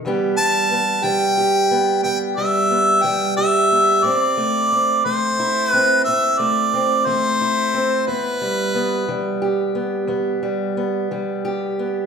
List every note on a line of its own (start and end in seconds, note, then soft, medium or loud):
0.05 0.65 E2 medium
0.05 1.03 E3 medium
0.05 0.37 G3 medium
0.05 0.70 B3 medium
0.05 1.36 G4 medium
0.37 1.03 G3 medium
0.37 1.05 A5 loud
0.72 1.70 B3 medium
1.04 1.64 E3 medium
1.04 2.37 G3 medium
1.04 2.02 G5 loud
1.38 3.37 G4 medium
1.71 2.04 B3 soft
2.03 2.65 E2 medium
2.03 2.70 B3 medium
2.03 2.18 G5 medium
2.37 3.03 G3 medium
2.37 3.04 E5 medium
2.71 3.71 B3 medium
3.02 3.65 E3 medium
3.02 4.05 G3 medium
3.02 3.36 G5 loud
3.37 4.01 G4 medium
3.37 4.06 E5 loud
3.72 4.04 B3 medium
4.03 4.65 A2 medium
4.03 4.71 C4 medium
4.03 5.04 D5 medium
4.37 5.05 A3 medium
4.72 5.72 C4 medium
5.05 5.66 E3 medium
5.05 6.38 A3 soft
5.05 5.70 C5 medium
5.39 7.41 E4 medium
5.70 6.06 C4 medium
5.70 6.02 B4 medium
6.04 6.67 A2 medium
6.04 6.72 C4 medium
6.04 6.40 E5 medium
6.38 7.06 A3 medium
6.38 7.08 D5 medium
6.74 7.73 C4 medium
7.06 7.67 E3 medium
7.06 8.04 A3 medium
7.06 8.07 C5 medium
7.41 9.41 E4 medium
7.74 8.04 C4 medium
8.07 8.68 E2 medium
8.07 8.75 B3 medium
8.07 9.38 B4 medium
8.41 9.08 G3 medium
8.75 9.75 B3 medium
9.09 9.69 E3 medium
9.09 10.42 G3 medium
9.42 11.44 G4 medium
9.75 10.08 B3 medium
10.07 10.69 E2 medium
10.07 10.76 B3 medium
10.43 11.10 G3 medium
10.77 11.78 B3 medium
11.11 11.71 E3 medium
11.11 12.06 G3 medium
11.45 12.06 G4 medium
11.79 12.06 B3 medium